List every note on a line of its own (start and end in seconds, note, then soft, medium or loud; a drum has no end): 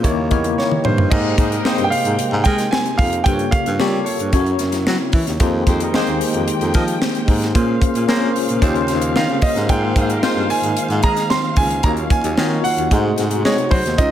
0.03 0.26 D#2 loud
0.03 1.11 C#3 medium
0.03 1.10 D#3 medium
0.03 1.10 E3 medium
0.03 1.11 G3 medium
0.03 0.28 A#3 medium
0.03 0.28 D#4 medium
0.03 0.28 E4 medium
0.03 0.28 G4 medium
0.03 0.28 C#5 medium
0.03 kick medium
0.03 closed hi-hat medium
0.31 0.53 E2 medium
0.31 1.02 A#3 medium
0.31 1.03 D#4 medium
0.31 1.03 E4 medium
0.31 1.03 G4 medium
0.31 1.03 C#5 medium
0.31 kick medium
0.31 closed hi-hat medium
0.44 closed hi-hat medium
0.58 0.85 C#5 medium
0.58 snare medium
0.71 high tom medium
0.85 1.07 G2 medium
0.85 1.12 C5 medium
0.85 mid tom medium
0.98 floor tom medium
1.10 1.34 G#2 loud
1.10 3.24 C3 medium
1.10 3.24 G#3 medium
1.10 1.59 A#3 medium
1.10 4.30 A#3 medium
1.10 1.59 D#4 medium
1.10 1.59 G4 medium
1.10 1.59 G#4 medium
1.10 1.60 C5 medium
1.10 1.80 D#5 medium
1.10 3.24 G5 medium
1.10 kick loud
1.10 crash medium
1.37 1.60 G#2 medium
1.37 1.48 G3 medium
1.37 1.49 D#4 medium
1.37 1.49 C5 medium
1.37 kick loud
1.37 closed hi-hat medium
1.51 1.62 G3 medium
1.51 1.62 D#4 medium
1.51 1.62 A#4 medium
1.51 closed hi-hat medium
1.65 1.87 G3 medium
1.65 2.61 A#3 medium
1.65 2.61 D#4 medium
1.65 1.87 D#4 medium
1.65 2.61 G4 medium
1.65 2.61 G#4 medium
1.65 1.87 C5 loud
1.65 2.61 C5 medium
1.65 snare loud
1.78 1.90 G2 medium
1.78 closed hi-hat soft
1.84 1.92 G5 medium
1.90 2.46 F5 medium
1.90 open hi-hat medium
2.05 2.17 G#2 medium
2.05 closed hi-hat medium
2.19 closed hi-hat medium
2.32 2.43 G#2 loud
2.44 2.68 G#3 loud
2.44 2.54 C4 medium
2.44 2.54 A#4 medium
2.44 2.54 D#5 medium
2.44 2.72 G5 loud
2.44 kick medium
2.44 snare soft
2.44 closed hi-hat medium
2.58 snare soft
2.58 closed hi-hat medium
2.71 2.99 G#5 loud
2.71 snare loud
2.86 closed hi-hat soft
2.98 3.21 F2 medium
2.98 3.26 F5 medium
2.98 kick medium
2.98 open hi-hat medium
3.13 closed hi-hat soft
3.24 3.48 G2 loud
3.24 4.31 C#3 medium
3.24 4.32 G3 medium
3.24 3.74 A#3 medium
3.24 3.74 F4 medium
3.24 4.32 F4 medium
3.24 3.74 G4 medium
3.24 3.74 A4 medium
3.24 3.33 C5 medium
3.24 3.53 G5 loud
3.24 kick loud
3.24 closed hi-hat medium
3.33 3.77 C#5 medium
3.39 closed hi-hat soft
3.51 4.07 F5 loud
3.51 kick loud
3.51 closed hi-hat medium
3.66 3.78 G2 loud
3.66 closed hi-hat medium
3.79 4.02 G3 loud
3.79 4.33 A#3 medium
3.79 4.33 F4 medium
3.79 4.33 G4 medium
3.79 4.32 A4 medium
3.79 4.33 C#5 medium
3.79 snare loud
4.05 5.09 C#5 medium
4.05 open hi-hat medium
4.20 4.31 G2 medium
4.20 closed hi-hat medium
4.33 4.55 F#2 loud
4.33 5.39 C#3 medium
4.33 5.39 F#3 medium
4.33 5.39 A#3 medium
4.33 5.28 C#4 medium
4.33 5.29 E4 medium
4.33 5.39 E4 medium
4.33 5.29 F#4 medium
4.33 4.40 A4 medium
4.33 5.29 C#5 medium
4.33 kick medium
4.33 closed hi-hat medium
4.40 5.32 A#4 medium
4.46 closed hi-hat soft
4.59 4.83 F#2 medium
4.59 snare soft
4.59 closed hi-hat medium
4.72 snare soft
4.72 closed hi-hat medium
4.87 4.98 F#3 loud
4.87 snare loud
5.13 5.24 E3 medium
5.13 kick medium
5.13 open hi-hat medium
5.27 5.39 D#2 medium
5.27 snare soft
5.27 closed hi-hat soft
5.40 5.62 F2 loud
5.40 7.53 D#3 medium
5.40 8.59 G#3 medium
5.40 5.88 A#3 medium
5.40 8.59 A#3 medium
5.40 5.88 D#4 medium
5.40 5.88 G4 medium
5.40 5.88 G#4 medium
5.40 5.89 C5 medium
5.40 7.53 G5 medium
5.40 kick loud
5.40 closed hi-hat medium
5.67 5.89 F2 loud
5.67 5.78 G#3 medium
5.67 5.78 G4 medium
5.67 5.78 C5 medium
5.67 kick loud
5.67 closed hi-hat medium
5.80 5.92 G3 medium
5.80 5.92 D#4 medium
5.80 5.92 A#4 medium
5.80 closed hi-hat medium
5.94 6.16 G#3 loud
5.94 6.90 A#3 medium
5.94 6.90 D#4 medium
5.94 6.16 G4 medium
5.94 6.90 G4 medium
5.94 6.90 G#4 medium
5.94 6.16 C5 loud
5.94 6.90 C5 medium
5.94 snare loud
6.07 6.19 D#2 medium
6.07 closed hi-hat soft
6.21 open hi-hat medium
6.34 6.46 F2 medium
6.34 closed hi-hat medium
6.48 closed hi-hat medium
6.61 6.72 F2 medium
6.61 closed hi-hat soft
6.74 6.97 F3 medium
6.74 6.83 C4 medium
6.74 6.83 A#4 medium
6.74 6.83 D#5 medium
6.74 kick medium
6.74 snare soft
6.74 closed hi-hat medium
6.88 closed hi-hat medium
7.02 snare loud
7.15 closed hi-hat soft
7.28 7.50 G#2 medium
7.28 kick medium
7.28 open hi-hat medium
7.42 snare soft
7.42 closed hi-hat soft
7.54 7.77 A#2 loud
7.54 9.67 C#3 medium
7.54 8.03 A#3 medium
7.54 8.03 C#4 medium
7.54 8.03 F4 medium
7.54 8.03 G#4 medium
7.54 8.03 C5 medium
7.54 12.87 F5 medium
7.54 kick loud
7.54 closed hi-hat medium
7.82 kick loud
7.82 closed hi-hat medium
7.95 8.06 A#2 loud
7.95 closed hi-hat medium
8.08 8.60 A#3 medium
8.08 8.31 A#3 loud
8.08 8.61 C#4 medium
8.08 8.61 F4 medium
8.08 8.62 G#4 medium
8.08 8.62 C5 medium
8.08 snare loud
8.36 open hi-hat medium
8.49 8.60 A#2 medium
8.49 closed hi-hat medium
8.62 8.84 D#2 loud
8.62 9.69 G3 medium
8.62 9.58 A#3 medium
8.62 9.58 C#4 medium
8.62 9.58 F4 medium
8.62 9.58 G4 medium
8.62 11.81 C5 medium
8.62 9.58 C5 loud
8.62 kick medium
8.62 closed hi-hat medium
8.75 closed hi-hat soft
8.88 9.12 D#2 medium
8.88 snare soft
8.88 closed hi-hat medium
9.02 closed hi-hat medium
9.16 9.28 D#3 medium
9.16 9.44 F5 medium
9.16 snare loud
9.30 9.41 C#3 medium
9.42 9.70 D#5 medium
9.42 kick medium
9.42 open hi-hat medium
9.56 9.67 G#2 medium
9.56 snare soft
9.56 closed hi-hat soft
9.69 9.92 G#2 loud
9.69 12.88 D#3 medium
9.69 11.82 G#3 medium
9.69 10.17 A#3 medium
9.69 10.17 D#4 medium
9.69 10.17 F4 medium
9.69 10.18 G#4 medium
9.69 10.18 C5 medium
9.69 10.53 G5 loud
9.69 kick loud
9.69 closed hi-hat medium
9.96 10.18 G#2 loud
9.96 10.07 G#3 medium
9.96 10.07 F4 medium
9.96 10.07 C5 medium
9.96 kick loud
9.96 closed hi-hat medium
10.09 10.20 A#3 medium
10.09 10.20 G4 medium
10.09 10.20 A#4 medium
10.09 closed hi-hat medium
10.22 10.44 G#3 medium
10.22 11.19 A#3 medium
10.22 11.19 D#4 medium
10.22 10.44 F4 medium
10.22 11.19 F4 medium
10.22 11.19 G#4 medium
10.22 10.44 C5 loud
10.22 11.19 C5 medium
10.22 snare loud
10.36 10.47 G2 medium
10.50 11.00 G#5 loud
10.50 open hi-hat medium
10.63 10.74 G#2 medium
10.63 closed hi-hat medium
10.77 closed hi-hat medium
10.90 11.01 G#2 medium
10.90 closed hi-hat soft
11.03 11.26 G#3 medium
11.03 11.11 C4 medium
11.03 11.12 G#4 medium
11.03 11.11 D#5 medium
11.03 11.31 A#5 loud
11.03 kick medium
11.03 closed hi-hat medium
11.17 snare soft
11.17 closed hi-hat medium
11.30 11.55 C6 loud
11.30 snare loud
11.56 11.79 C#2 medium
11.56 11.85 G#5 loud
11.56 kick medium
11.56 open hi-hat medium
11.70 closed hi-hat soft
11.83 12.06 D#2 loud
11.83 12.90 F#3 medium
11.83 12.32 A#3 medium
11.83 12.91 C#4 medium
11.83 12.32 D#4 medium
11.83 12.32 F4 medium
11.83 12.32 F#4 medium
11.83 12.32 C#5 medium
11.83 11.90 A#5 loud
11.83 kick loud
11.83 closed hi-hat medium
11.97 closed hi-hat soft
12.10 12.61 G#5 loud
12.10 kick loud
12.10 closed hi-hat medium
12.23 12.35 D#2 loud
12.23 closed hi-hat medium
12.37 12.60 D#3 loud
12.37 12.91 A#3 medium
12.37 12.90 D#4 medium
12.37 12.92 F4 medium
12.37 12.90 F#4 medium
12.37 12.92 C#5 medium
12.37 snare loud
12.64 13.47 F#5 loud
12.64 open hi-hat medium
12.78 12.89 D#2 medium
12.78 closed hi-hat medium
12.91 13.13 G#2 loud
12.91 13.98 C3 medium
12.91 13.87 A3 medium
12.91 13.98 A3 medium
12.91 13.87 D#4 medium
12.91 13.87 F#4 medium
12.91 13.98 F#4 medium
12.91 13.87 G#4 medium
12.91 13.98 G#4 medium
12.91 13.87 C5 medium
12.91 kick medium
12.91 closed hi-hat medium
13.18 13.40 G#2 medium
13.18 snare soft
13.18 closed hi-hat medium
13.31 closed hi-hat medium
13.45 13.56 G#3 loud
13.45 13.73 C#5 medium
13.45 snare loud
13.58 closed hi-hat soft
13.71 13.82 F#3 medium
13.71 13.99 C5 medium
13.71 kick loud
13.71 open hi-hat medium
13.85 13.96 D#2 medium
13.85 snare soft
13.85 closed hi-hat soft
13.98 14.11 C#2 loud
13.98 14.11 C#3 medium
13.98 14.11 F3 medium
13.98 14.11 C#4 medium
13.98 14.11 D#4 medium
13.98 14.11 F4 medium
13.98 14.11 G#4 medium
13.98 14.11 C5 medium
13.98 14.11 D#5 loud
13.98 kick loud
13.98 closed hi-hat loud